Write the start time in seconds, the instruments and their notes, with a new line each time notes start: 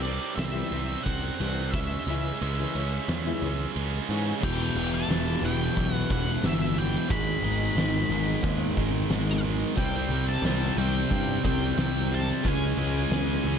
Already playing: picked electric bass C2, steel-string acoustic guitar E3 G3 C4
0.03 distorted electric guitar C3 G3 C4, lead electric guitar D5, ride
0.36 picked electric bass C2, distorted electric guitar C3, lead electric guitar E5, muted steel-string acoustic guitar stroke, snare, ride
0.40 distorted electric guitar G3 C4
0.53 steel-string acoustic guitar E3 G3 C4 G4
0.71 picked electric bass C2, distorted electric guitar C3 G3 C4, ride
1.03 picked electric bass C2, distorted electric guitar C3 G3 C4, lead electric guitar F#5, kick, ride
1.22 muted steel-string acoustic guitar stroke
1.40 picked electric bass C2, distorted electric guitar C3 G3 C4, steel-string acoustic guitar E3 G3 C4 G4, ride
1.71 picked electric bass C#2, distorted electric guitar C#3 G#3, lead electric guitar E5, kick, ride
1.75 distorted electric guitar C#4
1.92 muted steel-string acoustic guitar stroke
2.07 picked electric bass C#2, distorted electric guitar C#3 G#3 C#4, steel-string acoustic guitar E3 G#3 C#4 E4, ride
2.41 picked electric bass C#2, distorted electric guitar C#3 G#3 C#4, muted steel-string acoustic guitar stroke, ride
2.59 steel-string acoustic guitar E3 G#3 C#4 E4
2.75 picked electric bass C#2, distorted electric guitar C#3 G#3 C#4, ride
3.08 picked electric bass E2, distorted electric guitar C#3 G#3 C#4, muted steel-string acoustic guitar stroke, snare, ride
3.26 steel-string acoustic guitar E3 G#3 C#4 E4
3.42 picked electric bass C#2, distorted electric guitar C#3 G#3 C#4, ride
3.76 picked electric bass C#2, distorted electric guitar C#3 G#3 C#4, ride
3.94 muted steel-string acoustic guitar stroke
4.09 picked electric bass G#2, distorted electric guitar C#3 G#3 C#4, steel-string acoustic guitar E3 G#3 C#4 E4, ride
4.41 picked electric bass E1, distorted electric guitar E2 B2, string machine B3 E4 G4 E5, lead electric guitar G5, kick, crash
4.45 distorted electric guitar E3
4.75 picked electric bass E1, distorted electric guitar E2 B2 E3, open hi-hat
4.95 lead electric guitar A5
5.09 picked electric bass E1, distorted electric guitar E2 B2 E3, snare, open hi-hat
5.42 picked electric bass E1, distorted electric guitar E2 B2 E3, lead electric guitar G5, open hi-hat
5.76 picked electric bass B1, distorted electric guitar E2 B2 E3, kick, open hi-hat
5.92 lead electric guitar F#5
6.10 picked electric bass E1, distorted electric guitar E2 B2 E3, lead electric guitar F#5, kick, open hi-hat
6.43 picked electric bass G1, distorted electric guitar E2 B2 E3, lead electric guitar E5, snare, open hi-hat
6.77 distorted electric guitar E2 B2 E3, lead electric guitar G5, open hi-hat
7.08 picked electric bass G#1, distorted electric guitar G#2 D#3 G#3, string machine B3 D#4 G#4 D#5, lead electric guitar B5, kick, open hi-hat
7.14 distorted electric guitar G#3
7.42 picked electric bass G#1, distorted electric guitar G#2 D#3 G#3, open hi-hat
7.75 picked electric bass G#1, distorted electric guitar G#2 D#3 G#3, snare, open hi-hat
8.09 picked electric bass G#1, distorted electric guitar G#2 D#3 G#3, open hi-hat
8.43 picked electric bass D#2, distorted electric guitar G#2 D#3 G#3, kick, open hi-hat
8.77 picked electric bass G#1, distorted electric guitar G#2 D#3 G#3, kick, open hi-hat
9.10 picked electric bass G#1, distorted electric guitar G#2 D#3 G#3, snare, open hi-hat
9.44 distorted electric guitar G#2 D#3 G#3, open hi-hat
9.77 picked electric bass C2, distorted electric guitar C3 G3 C4, string machine C4 E4 G4 E5, lead electric guitar G5, kick, open hi-hat
10.09 picked electric bass C2, distorted electric guitar C3 G3 C4, open hi-hat
10.29 lead electric guitar A5
10.42 picked electric bass C2, distorted electric guitar C3 G3, snare, open hi-hat
10.46 distorted electric guitar C4
10.77 picked electric bass C2, distorted electric guitar C3 G3 C4, lead electric guitar G5, open hi-hat
11.10 picked electric bass G2, distorted electric guitar C3 G3 C4, kick, open hi-hat
11.43 picked electric bass C2, distorted electric guitar C3 G3 C4, lead electric guitar G5, kick, open hi-hat
11.77 picked electric bass C2, distorted electric guitar C3 G3 C4, snare, open hi-hat
12.11 distorted electric guitar C3 G3 C4, lead electric guitar A5, open hi-hat
12.44 picked electric bass C#2, distorted electric guitar C#3 G#3 C#4, string machine C#4 G#4, kick, open hi-hat
12.49 lead electric guitar G#5
12.77 picked electric bass C#2, distorted electric guitar C#3 G#3 C#4, open hi-hat
13.11 picked electric bass C#2, distorted electric guitar C#3 G#3 C#4, snare, open hi-hat
13.44 picked electric bass C#2, distorted electric guitar C#3 G#3 C#4, open hi-hat